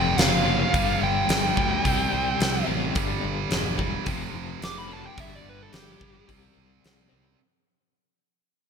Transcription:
Already playing: fingered electric bass F1, overdriven electric guitar F2 C3 F3, lead electric guitar G5
0.18 fingered electric bass F#1, lead electric guitar F5, snare, open hi-hat
0.45 overdriven electric guitar F2 C3 F3
0.72 fingered electric bass G1, overdriven electric guitar G2 D3 G3, kick, open hi-hat
1.02 fingered electric bass G1, lead electric guitar G5
1.29 fingered electric bass G1, snare, open hi-hat
1.57 fingered electric bass D2, overdriven electric guitar G2 D3 G3, kick
1.84 fingered electric bass C2, overdriven electric guitar C3 G3 C4, kick, open hi-hat
2.13 fingered electric bass C2
2.40 fingered electric bass C2, snare, open hi-hat
2.66 fingered electric bass A1, overdriven electric guitar C3 G3 C4
2.93 fingered electric bass G1, overdriven electric guitar G2 D3 G3, kick, open hi-hat
3.23 fingered electric bass G1
3.51 fingered electric bass E1, snare, open hi-hat
3.78 overdriven electric guitar G2 D3 G3, kick
4.05 fingered electric bass F1, overdriven electric guitar F2 C3 F3, kick, open hi-hat
4.33 fingered electric bass F1
4.62 fingered electric bass F1, lead electric guitar D6, snare, open hi-hat
4.78 lead electric guitar B5
4.88 overdriven electric guitar F2 C3 F3
4.93 lead electric guitar A5
5.07 lead electric guitar G5
5.16 fingered electric bass G1, overdriven electric guitar G2 D3 G3, kick, open hi-hat
5.20 lead electric guitar E5
5.35 lead electric guitar D5
5.45 fingered electric bass G1
5.49 lead electric guitar B4
5.63 lead electric guitar A4
5.73 fingered electric bass G1, lead electric guitar G4, snare, open hi-hat
5.99 fingered electric bass G1, overdriven electric guitar G2 D3 G3, kick
6.27 fingered electric bass C2, overdriven electric guitar C3 G3 C4, kick, open hi-hat
6.57 fingered electric bass C2
6.84 fingered electric bass C2, snare, open hi-hat
7.09 fingered electric bass C2, overdriven electric guitar C3 G3 C4

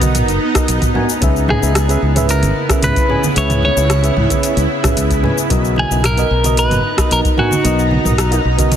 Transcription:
Already playing: fingered electric bass B1, ambient pad B3 D#4 A#5
0.00 fm electric piano B3 F#4 A#4 D#5, kick, closed hi-hat, high conga, cabasa
0.15 closed hi-hat, mid tom, cabasa
0.28 fingered electric bass F#1, closed hi-hat, cabasa
0.54 fm electric piano B3 F#4 A#4 D#5, kick, cross-stick, closed hi-hat, cabasa
0.68 fingered electric bass B1, closed hi-hat, cabasa
0.82 kick, closed hi-hat, mid tom, cabasa
0.94 fm electric piano B3 F#4 A#4 G#5, low conga
1.09 cabasa
1.21 fingered electric bass C#2, ambient pad C#3 E4, fm electric piano C#4 G#4 B4 E5, kick, closed hi-hat, cabasa
1.36 cabasa
1.48 clean electric guitar G#4, mid tom, high conga
1.61 fingered electric bass C#2, fm electric piano C#4 G#4 B4 E5, cabasa
1.75 cross-stick, closed hi-hat, cabasa
1.88 fm electric piano C#4 G#4 B4 E5, closed hi-hat, cabasa
2.02 fingered electric bass C#2
2.15 fm electric piano C#4 G#4 B4 E5, closed hi-hat, mid tom, high conga, cabasa
2.29 clean electric guitar A#4, closed hi-hat, cabasa
2.43 fingered electric bass G#1, closed hi-hat, high conga, cabasa
2.69 fm electric piano C#4 G#4 B4 E5, kick, cross-stick, closed hi-hat, cabasa
2.83 fingered electric bass C#2, clean electric guitar B4, closed hi-hat, mid tom, cabasa
2.96 kick, closed hi-hat, cabasa
3.08 fm electric piano C#4 G#4 B4 G#5, low conga
3.24 high conga, cabasa
3.35 fingered electric bass C#2, fm electric piano C#4 G#4 B4 E5, clean electric guitar C#5, closed hi-hat, cabasa
3.50 closed hi-hat, mid tom, cabasa
3.63 clean electric guitar C#5, high conga
3.76 fingered electric bass C#2, fm electric piano C#4 G#4 B4 E5, cabasa
3.90 cross-stick, closed hi-hat, cabasa
4.02 fm electric piano C#4 G#4 B4 E5, closed hi-hat, cabasa
4.17 fingered electric bass C#2, mid tom
4.29 fm electric piano C#4 G#4 B4 E5, kick, closed hi-hat, high conga, cabasa
4.43 closed hi-hat, cabasa
4.57 fingered electric bass C#2, closed hi-hat, cabasa
4.83 fm electric piano C#4 G#4 B4 E5, kick, cross-stick, closed hi-hat, mid tom, cabasa
4.97 fingered electric bass C#2, closed hi-hat, cabasa
5.11 kick, closed hi-hat, cabasa
5.22 fm electric piano C#4 G#4 B4 G#5, low conga
5.38 cabasa
5.49 fingered electric bass B1, fm electric piano B3 F#4 A#4 D#5, ambient pad B3 D#4 A#5, kick, closed hi-hat, cabasa
5.65 cabasa
5.76 clean electric guitar G#4, high conga
5.90 fingered electric bass B1, fm electric piano B3 F#4 A#4 D#5, cabasa
6.04 clean electric guitar A#4, cross-stick, closed hi-hat, mid tom, cabasa
6.17 fm electric piano B3 F#4 A#4 D#5, closed hi-hat, cabasa
6.31 fingered electric bass B1
6.44 fm electric piano B3 F#4 A#4 D#5, closed hi-hat, high conga, cabasa
6.57 clean electric guitar B4, closed hi-hat, cabasa
6.71 fingered electric bass F#1, closed hi-hat, mid tom, high conga, cabasa
6.97 fm electric piano B3 F#4 A#4 D#5, kick, cross-stick, closed hi-hat, cabasa
7.11 fingered electric bass B1, clean electric guitar A#4, closed hi-hat, cabasa
7.25 kick, closed hi-hat, cabasa
7.37 fm electric piano B3 F#4 A#4 G#5, clean electric guitar F#4, mid tom, low conga
7.51 high conga, cabasa
7.64 fingered electric bass B1, fm electric piano B3 F#4 A#4 D#5, ambient pad C#4, closed hi-hat, cabasa
7.79 cabasa
7.91 high conga
8.04 fingered electric bass B1, fm electric piano B3 F#4 A#4 D#5, mid tom, cabasa
8.18 cross-stick, closed hi-hat, cabasa
8.31 fm electric piano B3 F#4 A#4 D#5, closed hi-hat, cabasa
8.45 fingered electric bass B1
8.57 fm electric piano B3 F#4 A#4 D#5, kick, closed hi-hat, high conga, cabasa
8.72 closed hi-hat, mid tom, cabasa

